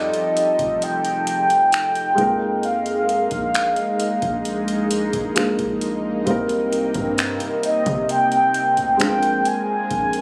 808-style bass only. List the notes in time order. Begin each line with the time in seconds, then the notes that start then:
Already playing: F2
0.59 F1
2.18 F2
3.32 A#1
4.23 A#1
5.14 A#1
5.37 A#1
5.59 A#1
6.27 C2
6.95 G2
7.87 C3
8.77 D2
9.00 A#1
9.91 A#1